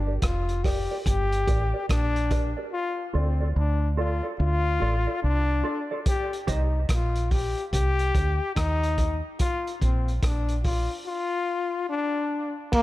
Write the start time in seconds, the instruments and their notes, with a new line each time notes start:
Already playing: fingered electric bass G1, trombone D4
0.07 clean electric guitar G4 A#4 D5
0.22 fingered electric bass F1, trombone F4, kick, cross-stick, closed hi-hat
0.49 closed hi-hat
0.64 trombone G4, clean electric guitar G4 A#4 D5, kick, cross-stick, open hi-hat
0.91 clean electric guitar G4 A#4 D5
1.05 fingered electric bass G1, trombone G4, kick, closed hi-hat
1.32 closed hi-hat
1.47 fingered electric bass A1, clean electric guitar G4 A#4 D5, kick, closed hi-hat
1.74 clean electric guitar G4 A#4 D5
1.89 fingered electric bass A#1, trombone D4, kick, cross-stick, closed hi-hat
2.16 closed hi-hat
2.31 clean electric guitar G4 A#4 D5, kick, closed hi-hat
2.57 clean electric guitar G4 A#4 D5
2.72 trombone F4
3.14 fingered electric bass D2, trombone C4, clean electric guitar F4 A4 D5
3.40 clean electric guitar F4 A4 D5
3.56 fingered electric bass D2, trombone D4
3.97 clean electric guitar F4 A4 D5, trombone F4
4.23 clean electric guitar F4 A4 D5
4.39 fingered electric bass D2, trombone F4
4.80 fingered electric bass A1, clean electric guitar F4 A4 D5
5.07 clean electric guitar F4 A4 D5
5.22 fingered electric bass C2, trombone D4
5.64 clean electric guitar F4 A4 D5
5.91 clean electric guitar F4 A4 D5
6.06 trombone G4, kick, closed hi-hat
6.33 closed hi-hat
6.47 fingered electric bass C2, trombone D#4, clean electric guitar G4 C5 D#5, kick, closed hi-hat
6.89 fingered electric bass A#1, trombone F4, kick, cross-stick, closed hi-hat
7.15 closed hi-hat
7.31 trombone G4, kick, open hi-hat
7.58 closed hi-hat
7.73 fingered electric bass C2, trombone G4, kick, closed hi-hat
7.99 closed hi-hat
8.14 fingered electric bass D2, kick, closed hi-hat
8.56 fingered electric bass D#2, trombone D#4, kick, cross-stick, closed hi-hat
8.83 closed hi-hat
8.98 kick, closed hi-hat
9.39 trombone F4, kick, closed hi-hat
9.67 closed hi-hat
9.81 fingered electric bass A#1, trombone C4, kick, closed hi-hat
10.08 closed hi-hat
10.23 fingered electric bass A#1, trombone D4, kick, cross-stick, closed hi-hat
10.49 closed hi-hat
10.63 trombone F4, kick, open hi-hat
11.06 trombone F4
11.89 trombone D4
12.73 trombone A#3, kick, crash